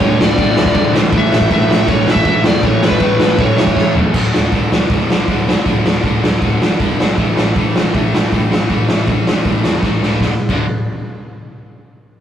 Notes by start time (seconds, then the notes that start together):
Already playing: C#5
0.01 D1 D2 A2 D3, kick, crash
0.19 D1 D2 A2 D3 D5, snare
0.37 B1 D2 A2 D3, kick, crash
0.54 D2 A2 D3, snare
0.59 D1
0.66 kick
0.73 D1 D2 A2 D3, kick, crash
0.92 D2 A2 D3, snare
0.96 A1
1.12 A1 A2 E3 A3, kick, crash
1.17 E5
1.31 A1 A2 E3 A3, snare
1.41 kick
1.50 A1 A2 E3 A3 E5, kick, crash
1.68 A1 A2 E3 A3, snare
1.86 G1 A2 E3 A3 C#5, kick, crash
2.06 A1 A2 E3 A3, snare
2.10 E5
2.16 kick
2.24 A1 A2 E3 A3, kick, crash
2.44 E2 A2 E3 A3 D5, snare
2.63 A1 A2 E3 A3 C#5, kick, crash
2.82 A1 A2 E3 A3, snare
2.86 B4
2.91 kick
3.00 A1 A2 E3 A3, kick, crash
3.19 A1 A2 E3 A3, snare
3.38 G1 A2 E3 A3 C#5, kick, crash
3.55 A1 A2 E3 A3, snare
3.67 kick
3.74 A1 A2 E3 A3, kick, snare
3.95 E2 A2 E3 A3, floor tom
4.14 D1 D2 A2 D3, kick, crash
4.33 D1 D2 A2 D3, snare
4.52 D1 D2 A2 D3, kick, open hi-hat
4.70 D1 D2 A2 D3, snare
4.90 D1 D2 A2 D3, kick, open hi-hat
5.07 D1 D2 A2, snare
5.11 D3
5.28 D1 D2 A2 D3, kick, open hi-hat
5.48 D2 A2 D3, snare
5.65 D1 D2 A2 D3, kick, open hi-hat
5.85 D1 D2 A2 D3, snare
6.03 D1 D2 A2 D3, kick, open hi-hat
6.23 D1 D2 A2 D3, snare
6.41 D1 D2 A2 D3, kick, open hi-hat
6.61 A1 D2 A2 D3, snare
6.80 D1 D2 A2 D3, kick, open hi-hat
7.00 B1 D2 A2 D3, snare
7.17 A1 A2 E3 A3, kick, open hi-hat
7.37 A1 A2 E3 A3, snare
7.56 A1 A2 E3 A3, kick, open hi-hat
7.76 A1 A2 E3 A3, snare
7.94 A1 A2 E3 A3, kick, open hi-hat
8.14 A1 A2 E3 A3, snare
8.32 A1 A2 E3 A3, kick, open hi-hat
8.50 A2 E3 A3, snare
8.69 A1 A2 E3 A3, kick, open hi-hat
8.89 A1 A2 E3 A3, snare
9.07 A1 A2 E3 A3, kick, open hi-hat
9.27 A1 A2 E3 A3, snare
9.45 A1 A2 E3 A3, kick, open hi-hat
9.64 E2 A2 E3 A3, snare
9.82 A1 A2 E3 A3, kick, snare
10.01 C#2 A2 E3 A3, snare
10.21 D1 D2 A2 D3, kick, snare
10.49 D1 D2 A2 D3, kick, crash